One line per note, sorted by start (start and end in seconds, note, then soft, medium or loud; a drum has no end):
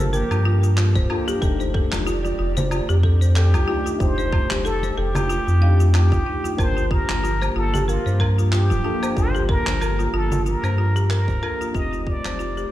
0.00 0.23 G1 medium
0.00 1.38 F3 medium
0.00 1.10 A#3 medium
0.00 1.38 A#3 medium
0.00 1.10 D4 medium
0.00 1.11 F4 medium
0.00 11.70 G4 medium
0.00 0.11 A4 medium
0.00 1.11 A4 loud
0.00 0.13 C5 medium
0.00 1.08 A5 loud
0.13 0.74 G4 medium
0.13 0.29 A#4 medium
0.13 cabasa medium
0.31 0.97 G2 medium
0.31 0.44 F4 medium
0.31 cabasa soft
0.31 low woodblock medium
0.45 0.62 F4 loud
0.63 0.72 F4 medium
0.63 cabasa medium
0.77 0.95 F4 medium
0.77 clap medium
0.77 cabasa medium
0.95 1.06 D1 medium
0.95 1.08 C5 loud
0.95 kick loud
0.95 cabasa soft
1.10 1.39 A#3 medium
1.10 1.39 D4 medium
1.10 1.20 F4 medium
1.10 1.39 F4 medium
1.10 1.40 A4 loud
1.10 low woodblock medium
1.28 1.41 G4 loud
1.28 high conga soft
1.28 cabasa medium
1.41 1.85 F1 loud
1.41 6.55 D#3 medium
1.41 3.64 A3 loud
1.41 3.65 D4 medium
1.41 3.65 D#4 medium
1.41 3.66 G4 loud
1.41 1.59 A4 loud
1.41 3.98 D5 medium
1.41 kick loud
1.41 cabasa medium
1.60 1.74 C5 medium
1.60 cabasa soft
1.74 1.90 A4 medium
1.74 kick loud
1.92 2.33 F1 medium
1.92 2.05 F4 medium
1.92 clap medium
1.92 high conga medium
1.92 cabasa medium
1.92 low woodblock medium
2.06 2.24 F4 loud
2.06 cabasa medium
2.25 2.33 F4 medium
2.25 high conga soft
2.25 cabasa soft
2.39 2.82 F1 medium
2.39 2.56 F4 medium
2.57 2.70 C5 loud
2.57 low conga loud
2.57 cabasa medium
2.71 2.81 F4 medium
2.71 cabasa medium
2.71 low woodblock medium
2.89 3.55 F2 medium
2.89 3.03 G4 loud
2.89 cabasa soft
3.03 3.20 A4 medium
3.03 kick medium
3.21 3.35 C5 medium
3.21 cabasa medium
3.36 4.03 G4 medium
3.36 3.52 A4 loud
3.36 clap medium
3.36 cabasa medium
3.54 3.64 C2 medium
3.54 3.66 F4 medium
3.54 high conga medium
3.54 cabasa soft
3.54 low woodblock medium
3.67 3.96 A3 medium
3.67 3.97 D4 medium
3.67 3.97 D#4 medium
3.67 3.85 F4 loud
3.67 3.97 G4 loud
3.86 3.94 F4 medium
3.86 cabasa medium
3.98 4.43 F1 loud
3.98 5.58 A3 medium
3.98 5.58 D4 medium
3.98 5.59 D#4 medium
3.98 4.17 F4 medium
3.98 4.65 C5 loud
3.98 kick loud
3.98 cabasa medium
4.02 5.60 G4 loud
4.18 4.31 C5 loud
4.18 cabasa soft
4.32 4.43 F4 medium
4.32 kick loud
4.32 low woodblock medium
4.50 4.91 F1 medium
4.50 4.64 G4 medium
4.50 clap medium
4.50 high conga medium
4.50 cabasa medium
4.65 4.82 A4 loud
4.65 5.00 A4 loud
4.65 cabasa medium
4.83 4.97 C5 medium
4.83 muted conga soft
4.83 high conga soft
4.83 cabasa soft
4.97 5.40 F1 medium
4.97 5.94 G4 loud
4.97 5.13 A4 loud
5.15 5.28 F4 medium
5.15 low conga medium
5.15 cabasa medium
5.15 low woodblock medium
5.30 5.46 F4 medium
5.30 cabasa medium
5.47 6.13 F2 medium
5.47 5.55 F4 medium
5.47 cabasa soft
5.60 6.54 A3 medium
5.60 6.55 D4 medium
5.60 6.55 D#4 medium
5.60 6.56 G4 loud
5.60 5.78 F5 medium
5.80 5.93 F4 medium
5.80 cabasa medium
5.94 6.04 F4 medium
5.94 6.61 G4 medium
5.94 clap medium
5.94 cabasa medium
5.94 low woodblock medium
6.12 6.22 F1 medium
6.12 6.26 F4 loud
6.12 kick loud
6.12 cabasa soft
6.26 6.36 D#4 medium
6.44 6.57 F4 medium
6.44 high conga soft
6.44 cabasa medium
6.57 7.01 G1 medium
6.57 11.71 F3 medium
6.57 8.80 A#3 medium
6.57 11.70 A#3 medium
6.57 8.80 D4 medium
6.57 8.81 F4 medium
6.57 6.75 A#4 loud
6.57 6.93 C5 loud
6.57 8.82 A5 loud
6.57 kick loud
6.57 cabasa medium
6.57 low woodblock medium
6.77 6.89 F4 medium
6.77 cabasa soft
6.91 7.08 F4 loud
6.91 7.56 A#4 loud
6.91 kick loud
7.09 7.49 G1 medium
7.09 7.17 F4 medium
7.09 clap medium
7.09 high conga medium
7.09 cabasa medium
7.23 7.40 F4 medium
7.23 cabasa medium
7.42 7.54 C5 medium
7.42 high conga soft
7.42 cabasa soft
7.42 low woodblock medium
7.56 7.98 G1 medium
7.56 7.66 F4 medium
7.56 7.91 A4 loud
7.74 7.87 G4 loud
7.74 low conga medium
7.74 cabasa medium
7.88 8.26 F4 medium
7.88 8.05 A#4 medium
7.88 cabasa medium
8.06 8.72 G2 medium
8.06 8.19 C5 medium
8.06 cabasa soft
8.20 8.36 A#4 medium
8.20 kick medium
8.20 low woodblock medium
8.38 8.51 F4 medium
8.38 cabasa medium
8.52 8.69 F4 loud
8.52 9.20 G4 loud
8.52 clap medium
8.52 cabasa medium
8.70 8.81 D1 medium
8.70 8.78 F4 medium
8.70 high conga medium
8.70 cabasa soft
8.83 9.13 A#3 medium
8.83 9.13 D4 medium
8.83 9.01 F4 medium
8.83 9.13 F4 medium
8.83 9.14 A4 loud
9.03 9.15 C5 loud
9.03 cabasa medium
9.03 low woodblock medium
9.15 9.59 G1 loud
9.15 11.38 A#3 medium
9.15 11.39 D4 medium
9.15 9.27 F4 medium
9.15 11.39 F4 medium
9.15 9.49 C5 loud
9.15 11.40 A5 loud
9.15 kick loud
9.15 cabasa medium
9.35 9.48 G4 loud
9.35 cabasa soft
9.49 9.66 A#4 loud
9.49 10.17 A#4 loud
9.49 kick loud
9.67 10.07 G1 medium
9.67 9.80 C5 medium
9.67 clap medium
9.67 high conga medium
9.67 cabasa medium
9.81 9.97 A#4 loud
9.81 cabasa medium
9.81 low woodblock medium
9.99 10.12 F4 medium
9.99 high conga soft
9.99 cabasa soft
10.14 10.56 G1 medium
10.14 10.31 F4 loud
10.14 10.49 A4 loud
10.32 10.40 F4 medium
10.32 low conga medium
10.32 cabasa medium
10.46 10.63 F4 medium
10.46 11.10 A#4 loud
10.46 cabasa medium
10.63 11.30 G2 medium
10.63 10.77 C5 medium
10.63 cabasa soft
10.63 low woodblock medium
10.78 10.88 F4 medium
10.96 11.09 G4 medium
10.96 cabasa medium
11.10 11.27 A#4 loud
11.10 11.77 A#4 loud
11.10 clap medium
11.10 cabasa medium
11.28 11.38 D1 medium
11.28 11.42 C5 medium
11.28 kick medium
11.28 cabasa soft
11.41 11.71 A#3 medium
11.41 11.71 D4 medium
11.41 11.71 F4 medium
11.41 11.72 A4 loud
11.41 11.59 A#4 loud
11.41 low woodblock medium
11.60 11.73 F4 medium
11.60 high conga soft
11.60 cabasa medium
11.73 12.17 F1 loud
11.73 12.71 D#3 medium
11.73 12.71 A3 medium
11.73 12.71 C4 medium
11.73 12.71 D#4 medium
11.73 11.92 F4 loud
11.73 12.71 G4 medium
11.73 12.71 G4 loud
11.73 12.71 C5 medium
11.73 12.09 D#5 loud
11.73 kick loud
11.73 cabasa medium
11.93 12.01 F4 medium
11.93 cabasa soft
12.07 12.24 F4 medium
12.07 12.71 D5 loud
12.07 kick loud
12.25 12.65 F1 medium
12.25 12.38 C5 loud
12.25 clap medium
12.25 high conga medium
12.25 cabasa medium
12.25 low woodblock medium
12.39 12.49 F4 medium
12.39 cabasa soft
12.57 12.71 G4 loud
12.57 high conga soft
12.57 cabasa soft